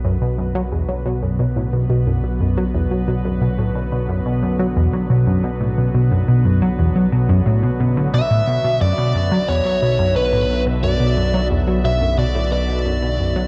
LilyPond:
<<
  \new Staff \with { instrumentName = "Lead electric guitar" } { \time 4/4 \key b \minor \tempo 4 = 89 r1 | r1 | r1 | e''4 d''4 cis''4 b'8. r16 |
d''4 r8 e''8 d''8 d''4. | }
  \new Staff \with { instrumentName = "Ambient pad" } { \time 4/4 \key b \minor << { b'1~ | b'1~ | b'1 | e''1~ |
e''1 | } \\ { <d fis b fis'>1~ | <d fis b fis'>1~ | <d fis b fis'>1~ | <d fis b fis'>1~ |
<d fis b fis'>1 | } >> }
  \new Staff \with { instrumentName = "Synth arpeggio sound" } { \clef bass \time 4/4 \key b \minor fis,16 b,16 fis,16 fis16 e,16 fis16 b,16 fis,16 b,16 a,16 b,16 b,16 fis,16 b,16 fis,16 fis16 | e,16 fis16 b,16 fis,16 b,16 a,16 b,16 b,16 fis,16 b,16 fis,16 fis16 e,16 fis16 b,16 fis,16 | b,16 a,16 b,16 b,16 fis,16 b,16 fis,16 fis16 e,16 fis16 b,16 fis,16 a,16 b,16 b,16 d16 | b,16 a,16 b,16 b,16 fis,16 b,16 fis,16 fis16 e,16 fis16 b,16 fis,16 b,16 a,16 b,16 b,16 |
fis,16 b,16 fis,16 fis16 e,16 fis16 b,16 fis,16 b,16 a,16 b,16 b,16 fis,16 b,16 fis,16 fis16 | }
  \new Staff \with { instrumentName = "Synth drone" } { \clef bass \time 4/4 \key b \minor b,,1~ | b,,1~ | b,,1 | b,,1~ |
b,,1 | }
>>